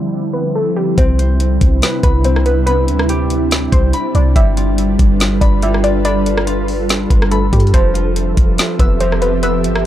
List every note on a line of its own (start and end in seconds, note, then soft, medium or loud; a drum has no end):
0.00 0.94 D2 medium
0.00 0.94 D3 medium
0.00 0.94 F3 medium
0.00 0.94 G3 medium
0.00 0.94 C4 medium
0.00 0.94 E4 medium
0.00 0.30 D5 loud
0.33 0.54 B4 medium
0.55 0.76 A4 medium
0.76 0.97 G4 medium
0.98 1.59 C2 loud
0.98 4.32 C3 medium
0.98 7.70 G3 medium
0.98 4.33 C4 medium
0.98 2.24 C4 medium
0.98 7.70 D4 medium
0.98 4.32 E4 medium
0.98 1.99 C5 loud
0.98 kick loud
0.98 closed hi-hat medium
1.19 2.52 C5 medium
1.19 closed hi-hat medium
1.40 closed hi-hat medium
1.61 1.82 C2 loud
1.61 kick loud
1.61 closed hi-hat medium
1.82 2.45 B4 medium
1.82 snare loud
1.82 closed hi-hat medium
2.03 2.90 C2 loud
2.03 2.24 B4 medium
2.03 2.66 B5 medium
2.03 kick loud
2.03 closed hi-hat medium
2.24 4.00 C4 medium
2.24 2.45 C5 medium
2.24 closed hi-hat medium
2.36 cross-stick medium
2.46 3.78 B4 medium
2.46 2.65 B4 medium
2.46 closed hi-hat medium
2.66 3.68 B4 loud
2.66 3.93 B5 medium
2.66 closed hi-hat medium
2.88 3.68 D2 medium
2.88 closed hi-hat medium
2.99 cross-stick loud
3.09 5.45 G4 medium
3.09 closed hi-hat medium
3.30 closed hi-hat medium
3.51 snare loud
3.51 closed hi-hat medium
3.72 3.93 C2 loud
3.72 5.47 C5 medium
3.72 4.12 C5 medium
3.72 kick loud
3.72 closed hi-hat medium
3.93 5.29 B5 medium
3.93 closed hi-hat medium
4.15 4.35 C2 loud
4.15 4.35 D5 medium
4.15 closed hi-hat medium
4.36 4.97 G1 loud
4.36 5.61 G3 medium
4.36 7.71 F4 medium
4.36 9.86 A4 medium
4.36 7.71 B4 medium
4.36 5.37 E5 loud
4.36 kick loud
4.36 closed hi-hat medium
4.57 5.20 F4 medium
4.57 closed hi-hat medium
4.78 closed hi-hat medium
4.99 5.40 G1 loud
4.99 kick loud
4.99 closed hi-hat medium
5.20 5.83 F4 medium
5.20 snare loud
5.20 closed hi-hat medium
5.41 7.06 G1 loud
5.41 5.61 D5 medium
5.41 6.04 B5 medium
5.41 kick loud
5.41 closed hi-hat medium
5.62 7.79 G3 loud
5.62 5.83 E5 medium
5.62 closed hi-hat medium
5.74 cross-stick medium
5.84 6.46 F4 medium
5.84 6.04 D5 loud
5.84 closed hi-hat medium
6.05 7.07 D5 loud
6.05 7.31 B5 medium
6.05 closed hi-hat medium
6.26 closed hi-hat medium
6.37 cross-stick loud
6.47 7.10 F4 medium
6.47 closed hi-hat medium
6.68 open hi-hat medium
6.89 snare loud
6.89 closed hi-hat medium
7.10 7.51 G1 loud
7.10 7.94 F4 medium
7.10 7.30 B4 medium
7.10 kick loud
7.10 closed hi-hat medium
7.22 cross-stick loud
7.31 7.52 A4 medium
7.31 8.67 B5 loud
7.31 closed hi-hat medium
7.53 7.73 G2 loud
7.53 7.73 G4 medium
7.53 kick loud
7.53 closed hi-hat medium
7.60 closed hi-hat soft
7.67 closed hi-hat soft
7.74 8.35 F1 loud
7.74 8.99 F3 loud
7.74 9.86 F3 medium
7.74 9.86 C4 medium
7.74 9.86 G4 medium
7.74 8.76 C5 loud
7.74 9.86 E5 medium
7.74 kick loud
7.74 closed hi-hat medium
7.94 8.58 F4 medium
7.94 closed hi-hat medium
8.16 closed hi-hat medium
8.37 8.58 F1 loud
8.37 kick loud
8.37 closed hi-hat medium
8.58 9.21 F4 medium
8.58 snare loud
8.58 closed hi-hat medium
8.79 9.65 F1 loud
8.79 9.00 B4 medium
8.79 9.43 E6 medium
8.79 kick loud
8.79 closed hi-hat medium
9.00 9.86 F3 medium
9.00 9.21 C5 medium
9.00 closed hi-hat medium
9.12 cross-stick medium
9.21 9.85 F4 medium
9.21 9.42 B4 medium
9.21 closed hi-hat medium
9.43 9.86 B4 loud
9.43 9.86 E6 medium
9.43 closed hi-hat medium
9.64 9.86 G1 loud
9.64 closed hi-hat medium
9.76 cross-stick loud